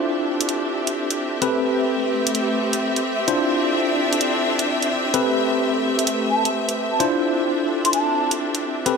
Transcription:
0.00 5.10 C4 medium
0.00 1.40 D4 medium
0.00 2.18 D4 medium
0.00 1.40 E4 medium
0.00 1.40 F4 medium
0.00 8.97 G4 medium
0.00 1.40 A4 medium
0.00 1.40 C5 medium
0.00 8.97 E5 medium
0.00 downlifter medium
0.23 8.97 C4 medium
0.41 closed hi-hat medium
0.49 closed hi-hat medium
0.87 closed hi-hat medium
1.10 closed hi-hat soft
1.42 3.26 A3 medium
1.42 3.28 A3 medium
1.42 3.26 C4 medium
1.42 3.26 G4 medium
1.42 3.26 A4 medium
1.42 3.26 B4 medium
1.42 closed hi-hat medium
2.27 closed hi-hat medium
2.35 closed hi-hat medium
2.73 closed hi-hat medium
2.96 closed hi-hat soft
3.28 5.90 D4 medium
3.28 5.12 D4 medium
3.28 5.12 E4 medium
3.28 5.12 F4 medium
3.28 5.12 A4 medium
3.28 5.12 C5 medium
3.28 closed hi-hat medium
4.13 closed hi-hat medium
4.21 closed hi-hat medium
4.59 closed hi-hat medium
4.82 closed hi-hat soft
5.14 7.00 A3 medium
5.14 6.98 A3 medium
5.14 8.97 C4 medium
5.14 6.98 C4 medium
5.14 6.98 G4 medium
5.14 6.98 A4 medium
5.14 6.98 B4 medium
5.14 closed hi-hat medium
5.99 closed hi-hat medium
6.07 closed hi-hat medium
6.30 6.48 A5 medium
6.45 closed hi-hat medium
6.69 closed hi-hat soft
6.92 7.05 A5 medium
7.00 8.84 D4 medium
7.00 8.97 D4 medium
7.00 8.84 E4 medium
7.00 8.84 F4 medium
7.00 8.84 A4 medium
7.00 8.84 C5 medium
7.00 closed hi-hat medium
7.85 7.91 C6 medium
7.85 closed hi-hat medium
7.93 8.31 A5 medium
7.93 closed hi-hat medium
8.31 closed hi-hat medium
8.55 closed hi-hat medium
8.86 8.97 A3 medium
8.86 8.97 C4 medium
8.86 8.97 G4 medium
8.86 8.97 A4 medium
8.86 8.97 B4 medium
8.86 closed hi-hat medium

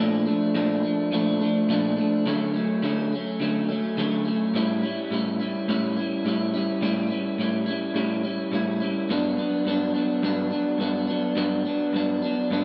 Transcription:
0.00 0.26 A#2 medium
0.00 0.27 F3 medium
0.00 0.26 A3 medium
0.00 0.24 D4 medium
0.25 0.54 F3 soft
0.25 0.55 A3 soft
0.25 0.55 D4 medium
0.55 0.84 A#2 medium
0.55 0.84 F3 medium
0.55 0.83 A3 medium
0.55 0.82 D4 loud
0.83 1.11 F3 soft
0.83 1.12 A3 soft
0.83 1.12 D4 soft
1.11 1.40 A#2 medium
1.11 1.41 F3 medium
1.11 1.40 A3 medium
1.11 1.39 D4 medium
1.40 1.69 F3 soft
1.40 1.69 A3 soft
1.40 1.69 D4 soft
1.69 1.98 A#2 medium
1.69 1.98 F3 medium
1.69 1.98 A3 medium
1.69 1.95 D4 medium
1.97 2.26 A3 soft
1.97 2.26 D4 medium
2.01 2.27 F3 soft
2.26 2.55 D3 medium
2.26 2.55 F#3 medium
2.26 2.54 A3 medium
2.26 2.52 C#4 medium
2.54 2.82 F#3 soft
2.54 2.83 A3 medium
2.54 2.83 C#4 medium
2.83 3.12 D3 medium
2.83 3.12 F#3 medium
2.83 3.13 A3 medium
2.83 3.11 C#4 medium
3.12 3.40 F#3 soft
3.12 3.41 A3 soft
3.12 3.41 C#4 medium
3.40 3.69 D3 medium
3.40 3.70 F#3 medium
3.40 3.69 A3 medium
3.40 3.67 C#4 medium
3.69 3.97 F#3 soft
3.69 3.98 A3 soft
3.69 3.98 C#4 medium
3.97 4.26 D3 medium
3.97 4.27 F#3 medium
3.97 4.26 A3 medium
3.97 4.24 C#4 medium
4.25 4.55 F#3 soft
4.25 4.55 A3 medium
4.25 4.54 C#4 medium
4.54 4.83 A2 medium
4.54 4.84 G3 loud
4.54 4.83 C#4 medium
4.54 4.81 E4 loud
4.82 5.11 G3 soft
4.82 5.12 C#4 medium
4.82 5.11 E4 medium
5.11 5.40 A2 medium
5.11 5.40 G3 medium
5.11 5.40 C#4 medium
5.11 5.38 E4 medium
5.40 5.68 G3 soft
5.40 5.69 C#4 medium
5.40 5.68 E4 medium
5.68 5.97 A2 medium
5.68 5.97 G3 medium
5.68 5.98 C#4 loud
5.68 5.95 E4 medium
5.97 6.25 G3 soft
5.97 6.26 C#4 soft
5.97 6.25 E4 medium
6.25 6.54 A2 medium
6.25 6.54 G3 medium
6.25 6.54 C#4 medium
6.25 6.52 E4 medium
6.54 6.81 G3 medium
6.54 6.82 C#4 medium
6.54 6.82 E4 medium
6.81 7.10 A2 medium
6.81 7.11 G3 loud
6.81 7.11 C#4 loud
6.81 7.09 E4 loud
7.10 7.40 C#4 medium
7.10 7.39 E4 medium
7.14 7.39 G3 soft
7.38 7.67 A2 medium
7.38 7.68 G3 medium
7.38 7.67 C#4 medium
7.38 7.65 E4 medium
7.66 7.94 G3 soft
7.66 7.95 C#4 medium
7.66 7.95 E4 medium
7.95 8.24 A2 medium
7.95 8.24 G3 medium
7.95 8.23 C#4 loud
7.95 8.22 E4 medium
8.23 8.51 G3 soft
8.23 8.52 C#4 medium
8.23 8.52 E4 medium
8.52 8.81 A2 medium
8.52 8.81 G3 medium
8.52 8.81 C#4 medium
8.52 8.79 E4 medium
8.80 9.10 G3 soft
8.80 9.10 C#4 medium
8.80 9.09 E4 medium
9.09 9.38 G2 loud
9.09 9.38 F#3 medium
9.09 9.38 B3 loud
9.09 9.36 D4 loud
9.37 9.66 F#3 medium
9.37 9.67 B3 medium
9.37 9.66 D4 medium
9.65 9.94 G2 medium
9.65 9.95 F#3 medium
9.65 9.94 B3 medium
9.65 9.93 D4 medium
9.94 10.22 F#3 soft
9.94 10.23 B3 soft
9.94 10.23 D4 medium
10.23 10.51 G2 medium
10.23 10.52 F#3 medium
10.23 10.51 B3 medium
10.23 10.49 D4 loud
10.50 10.79 F#3 medium
10.50 10.80 B3 medium
10.50 10.79 D4 medium
10.78 11.08 G2 medium
10.78 11.08 F#3 medium
10.78 11.08 B3 medium
10.78 11.06 D4 medium
11.07 11.35 F#3 soft
11.07 11.36 B3 medium
11.07 11.36 D4 medium
11.36 11.65 G2 medium
11.36 11.65 F#3 medium
11.36 11.65 B3 loud
11.36 11.64 D4 loud
11.65 11.93 F#3 soft
11.65 11.94 B3 medium
11.65 11.93 D4 medium
11.93 12.22 G2 medium
11.93 12.22 F#3 medium
11.93 12.23 B3 medium
11.93 12.21 D4 medium
12.22 12.51 F#3 soft
12.22 12.52 B3 medium
12.22 12.51 D4 medium
12.51 12.64 G2 medium
12.51 12.64 F#3 medium
12.51 12.64 B3 loud
12.51 12.64 D4 medium

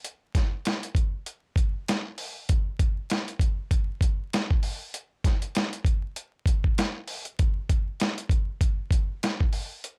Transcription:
0.04 closed hi-hat medium
0.35 kick medium
0.35 snare soft
0.35 closed hi-hat medium
0.65 snare loud
0.65 closed hi-hat medium
0.83 closed hi-hat medium
0.95 kick loud
0.95 closed hi-hat medium
1.26 closed hi-hat medium
1.56 kick loud
1.56 closed hi-hat medium
1.88 snare loud
1.88 closed hi-hat loud
2.18 open hi-hat medium
2.49 kick loud
2.49 closed hi-hat medium
2.79 kick medium
2.79 closed hi-hat medium
3.10 snare loud
3.10 closed hi-hat medium
3.28 closed hi-hat medium
3.40 kick loud
3.40 closed hi-hat medium
3.71 kick loud
3.71 closed hi-hat medium
4.01 kick medium
4.01 closed hi-hat medium
4.33 snare loud
4.33 closed hi-hat loud
4.51 kick loud
4.63 open hi-hat medium
4.94 closed hi-hat medium
5.24 kick medium
5.24 snare soft
5.24 closed hi-hat medium
5.42 closed hi-hat medium
5.55 snare loud
5.55 closed hi-hat medium
5.73 closed hi-hat medium
5.84 kick loud
5.84 closed hi-hat medium
6.16 closed hi-hat medium
6.46 kick loud
6.46 closed hi-hat medium
6.64 kick medium
6.78 snare loud
6.78 closed hi-hat loud
7.08 open hi-hat medium
7.25 closed hi-hat medium
7.39 kick loud
7.39 closed hi-hat medium
7.69 kick medium
7.69 closed hi-hat medium
8.00 snare loud
8.00 closed hi-hat medium
8.18 closed hi-hat medium
8.29 kick loud
8.29 closed hi-hat medium
8.61 kick loud
8.61 closed hi-hat medium
8.91 kick loud
8.91 closed hi-hat medium
9.23 snare loud
9.23 closed hi-hat loud
9.40 kick loud
9.53 open hi-hat medium
9.84 closed hi-hat medium

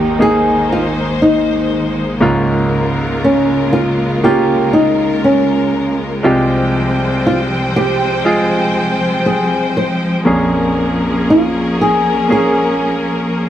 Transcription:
0.00 2.17 G#1 medium
0.00 2.17 D#2 medium
0.00 2.17 D#3 medium
0.00 0.12 G#3 medium
0.00 10.22 G#3 medium
0.00 0.19 A#3 medium
0.00 6.20 A#3 medium
0.00 0.20 D#4 medium
0.00 2.17 D#4 medium
0.00 0.17 G4 medium
0.00 0.17 A#4 medium
0.19 2.11 A#3 medium
0.19 2.12 D#4 medium
0.19 2.12 G#4 medium
0.19 0.72 G#4 medium
0.19 2.20 C5 medium
0.72 0.86 F4 medium
1.22 1.93 D#4 medium
2.20 6.20 C#2 medium
2.20 6.20 G#2 medium
2.20 6.20 C#3 medium
2.20 4.13 A#3 medium
2.20 4.14 C#4 medium
2.20 4.14 F4 medium
2.20 6.21 F4 medium
2.20 4.22 A#4 medium
3.24 3.76 C#4 medium
3.73 4.24 F4 medium
4.24 6.14 A#3 medium
4.24 6.15 C#4 medium
4.24 6.15 F4 medium
4.24 4.76 G4 medium
4.24 6.22 A#4 medium
4.73 5.24 D#4 medium
5.24 5.95 C#4 medium
6.23 10.22 C2 medium
6.23 10.22 C3 medium
6.23 13.49 F3 medium
6.23 8.14 G#3 medium
6.23 10.22 C4 medium
6.23 8.15 F4 medium
6.23 8.15 G4 medium
6.23 10.22 C5 medium
6.23 10.22 G5 medium
7.27 7.40 F4 medium
7.76 8.22 G4 medium
8.24 10.16 G#3 medium
8.24 10.16 F4 medium
8.24 10.16 G#4 medium
9.26 9.77 G#4 medium
9.77 9.90 C5 medium
10.24 13.49 A#1 soft
10.24 13.49 F2 soft
10.24 12.18 A#3 medium
10.24 13.49 A#3 medium
10.24 13.49 C#4 medium
10.24 12.19 C#4 medium
10.24 13.49 G#4 medium
10.24 12.19 G#4 medium
10.24 13.49 A#4 medium
11.30 11.81 F4 medium
11.81 12.31 G#4 medium
12.29 13.49 A#3 medium
12.29 13.49 C#4 soft
12.29 13.49 G#4 medium

